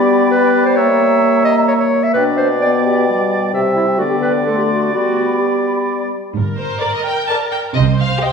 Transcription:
Already playing: bassoon G3, french horn section B3, clarinet G4, oboe D5, flute section B5
0.31 clarinet B4
0.66 clarinet C5
0.76 french horn section A#3, clarinet C#5, oboe E5, flute section A#5
1.45 clarinet D#5
1.68 clarinet C#5
1.80 clarinet C#5
2.04 clarinet E5
2.14 bassoon B2, french horn section D4, clarinet B4, oboe D5, flute section G5
2.37 clarinet C5
2.61 french horn section B3, clarinet D5
2.84 clarinet G4
3.09 french horn section G3
3.53 bassoon C3, oboe E5
3.76 clarinet E4
3.98 bassoon D3, french horn section B3, clarinet F#4, oboe D5
4.11 clarinet G4
4.22 clarinet B4
4.46 french horn section A3, clarinet A4, flute section C6
4.58 clarinet G4
4.69 clarinet F#4
4.93 bassoon G3, french horn section B3, clarinet F#4, flute section B5
5.40 clarinet G4
6.36 double bass section G1, cello section G2, viola section A#4
6.60 violin section C5
6.82 violin section A#4 D5
6.94 violin section D#5
7.05 violin section G5
7.28 violin section A#4 D5 A5
7.52 violin section G5
7.75 double bass section C2, cello section C3, viola section C5, violin section D#5
8.00 violin section F5
8.23 violin section G4 D#5 G5

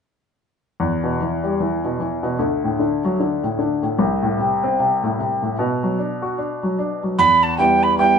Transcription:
0.80 grand piano E2
1.04 grand piano B2
1.20 grand piano E3
1.44 grand piano G3
1.60 grand piano E3
1.84 grand piano B2
2.00 grand piano E3
2.23 grand piano B2
2.39 grand piano D2
2.64 grand piano A2
2.79 grand piano D3
3.05 grand piano F#3
3.20 grand piano D3
3.44 grand piano A2
3.59 grand piano D3
3.83 grand piano A2
3.99 grand piano C2
4.23 grand piano A2
4.39 grand piano C3
4.64 grand piano C4
4.80 grand piano C3
5.03 grand piano A2
5.19 grand piano C3
5.42 grand piano A2
5.59 grand piano B2
5.83 grand piano F#3
5.99 grand piano D4
6.22 grand piano F#4
6.38 grand piano D4
6.63 grand piano F#3
6.79 grand piano D4
7.03 grand piano F#3
7.19 grand piano E2, tin whistle B5
7.43 tin whistle A5
7.58 grand piano G3 B3 E4, tin whistle G5
7.83 tin whistle B5
7.98 grand piano G3 B3 E4, tin whistle G5

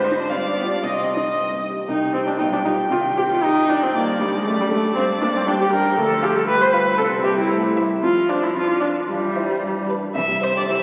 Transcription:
Already playing: grand piano G#2 C4, viola C5, violin C5
0.04 cello D#4
0.11 grand piano D#4 C5
0.18 cello D4
0.29 grand piano G2, cello C4, viola D5, violin F5
0.46 grand piano D4
0.57 cello B3
0.64 grand piano F4 G4
0.70 cello D4
0.82 grand piano C2, cello C4, violin D#5, viola D#5
1.00 grand piano C4
1.17 grand piano D#4
1.34 grand piano G2
1.53 grand piano C4
1.70 grand piano G4
1.88 grand piano C2, viola D#4, violin G5
2.14 viola C4, grand piano D#4 G4
2.27 viola D4
2.38 grand piano B1, cello G3, viola D#4, violin G5
2.53 viola D4
2.64 viola D#4, grand piano F4 G4
2.90 grand piano C2, cello D#3, viola F4
3.17 grand piano C4, viola G4
3.30 viola F4
3.42 viola D#4, grand piano G4
3.70 viola D4, grand piano D#4
3.83 viola C4
3.93 grand piano G2, cello D3, viola A#3, violin D5
4.21 viola G3, grand piano D4 G4
4.35 viola G#3
4.45 grand piano F#2, cello A3, viola A3, violin D5
4.61 viola G3
4.70 viola A3, grand piano D4 A4
4.95 grand piano G2, cello G3, viola C4
5.21 grand piano A#3, viola D4
5.36 viola C4
5.46 viola D4, grand piano G4, violin G5
5.60 viola G4
5.72 grand piano D4, viola A#4
5.98 grand piano D2, cello F3, viola A4
6.23 grand piano G3, viola G4, violin F5
6.36 viola A4
6.48 cello G3, grand piano G4, viola B4
6.62 viola C5
6.72 grand piano F4, viola B4, violin F5
6.97 grand piano C2, cello C4, viola A4
7.23 grand piano G3, viola G4, violin E5
7.39 viola E4
7.51 cello A3, grand piano C5
7.76 cello G3, grand piano E4, violin E5
8.02 grand piano F2, cello F3, viola F4
8.29 viola D4, grand piano F4 C5, violin C5
8.43 viola E4
8.55 grand piano F2, viola F4
8.81 viola D4, grand piano F4 D5, violin D5
9.09 grand piano G2, cello E3, viola G3
9.36 grand piano E4 C5, violin C5
9.62 grand piano G2
9.89 grand piano D4 B4, violin B4
10.15 grand piano C2, cello E3, violin E5
10.28 grand piano G3
10.41 cello C3, grand piano C5, violin C5
10.55 cello D3, grand piano G4, violin D5
10.68 cello E3, viola G4, grand piano C5, violin E5

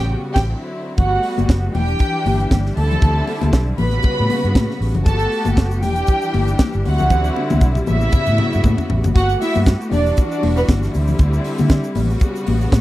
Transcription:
Already playing: fingered electric bass A1, string section C#3 G3 B3 F#4, violin section G4 G5
0.33 fingered electric bass A1, violin section G4 G5, kick, snare, crash
0.47 string section D3 F#3 C4 E4
0.97 fingered electric bass G1, string section G3 A3 B3 F#4, violin section F#4 F#5, kick, closed hi-hat, muted conga, low conga
1.23 open hi-hat
1.38 fingered electric bass G1, closed hi-hat, high conga
1.49 fingered electric bass F#1, kick, snare, closed hi-hat, muted conga
1.74 fingered electric bass E1, string section E3 G3 D4 G4, violin section G4 G5, open hi-hat, muted conga, high conga, low conga
1.88 closed hi-hat
1.99 kick, closed hi-hat
2.26 fingered electric bass G1, open hi-hat, high conga
2.40 closed hi-hat
2.51 fingered electric bass G1, kick, snare, closed hi-hat, high conga
2.66 snare
2.76 fingered electric bass D2, string section D3 C4 E4, violin section A4 A5, open hi-hat, muted conga
2.91 closed hi-hat, low conga
3.02 fingered electric bass D2, kick, closed hi-hat, muted conga, low conga
3.27 open hi-hat, muted conga
3.42 fingered electric bass D2, closed hi-hat, high conga
3.53 fingered electric bass B1, kick, snare, closed hi-hat, muted conga
3.78 fingered electric bass A1, string section C#3 B3 F#4, violin section B4 B5, open hi-hat, muted conga, high conga, low conga
3.91 closed hi-hat
4.03 muted fingered electric bass stroke, kick, closed hi-hat, muted conga
4.20 fingered electric bass A2
4.30 open hi-hat, muted conga, high conga
4.44 fingered electric bass G2, closed hi-hat
4.55 fingered electric bass A2, kick, snare, closed hi-hat, muted conga, high conga
4.71 snare
4.81 fingered electric bass A1, open hi-hat
4.94 fingered electric bass F#1, closed hi-hat, low conga
5.05 fingered electric bass G1, string section A3 B3 F#4 G4, violin section A4 A5, kick, closed hi-hat, muted conga, low conga, shaker
5.19 shaker
5.32 open hi-hat
5.45 fingered electric bass G1, closed hi-hat, high conga, shaker
5.57 fingered electric bass F#1, kick, snare, closed hi-hat, muted conga, shaker
5.71 shaker
5.82 fingered electric bass E1, string section E3 G3 D4 G4, violin section G4 G5, open hi-hat, high conga, low conga, shaker
5.96 closed hi-hat, shaker
6.07 kick, closed hi-hat, shaker
6.22 shaker
6.33 fingered electric bass G1, open hi-hat, muted conga, high conga
6.48 closed hi-hat, shaker
6.59 kick, snare, closed hi-hat, muted conga, high conga, shaker
6.73 fingered electric bass G1, shaker
6.85 fingered electric bass D2, string section D3 C4 E4, violin section F#4 F#5, open hi-hat, muted conga
6.98 fingered electric bass C#2, closed hi-hat, low conga, shaker
7.10 fingered electric bass D2, kick, high tom, muted conga, low conga, shaker
7.24 high tom, shaker
7.36 muted conga
7.50 fingered electric bass D2, high tom, high conga, shaker
7.61 fingered electric bass B1, kick, muted conga, shaker
7.75 mid tom, shaker
7.87 fingered electric bass A1, string section C#3 B3 F#4, violin section E4 E5, high conga, low conga, shaker
8.01 shaker
8.12 muted fingered electric bass stroke, kick, mid tom, shaker
8.26 fingered electric bass A2, mid tom, shaker
8.38 mid tom, high conga
8.53 fingered electric bass G2, shaker
8.64 fingered electric bass A2, kick, floor tom, muted conga, high conga, shaker
8.78 floor tom, shaker
8.90 fingered electric bass A1, floor tom
9.04 fingered electric bass F#1, floor tom, high conga, low conga, shaker
9.15 fingered electric bass G1, string section A3 B3 F#4 G4, violin section F#4 F#5, kick, closed hi-hat, shaker
9.29 shaker
9.40 violin section E4 E5, open hi-hat, muted conga, shaker
9.55 fingered electric bass G2, high conga, shaker
9.66 kick, snare, closed hi-hat, muted conga, shaker
9.81 shaker
9.92 fingered electric bass E1, string section E3 G3 D4 F#4, violin section D4 D5, open hi-hat, high conga, low conga, shaker
10.06 shaker
10.17 kick, closed hi-hat, muted conga, shaker
10.31 violin section D4 D5, shaker
10.43 fingered electric bass E1, open hi-hat, muted conga, high conga
10.56 violin section B3 B4, shaker
10.68 fingered electric bass G1, kick, snare, closed hi-hat, muted conga, high conga, shaker
10.83 snare, shaker
10.94 fingered electric bass D2, string section D3 C4 E4, open hi-hat, muted conga, shaker
11.07 low conga, shaker
11.19 fingered electric bass D2, kick, closed hi-hat, muted conga, shaker
11.33 shaker
11.44 open hi-hat, shaker
11.58 fingered electric bass D3, high conga, shaker
11.69 kick, snare, closed hi-hat, muted conga, shaker
11.84 shaker
11.95 fingered electric bass A1, string section C#3 B3 F#4, open hi-hat, muted conga, high conga, low conga, shaker
12.10 shaker
12.20 kick, closed hi-hat, muted conga, shaker
12.36 shaker
12.46 fingered electric bass A1, open hi-hat, muted conga, high conga
12.61 shaker
12.72 fingered electric bass A2, kick, snare, closed hi-hat, high conga, shaker

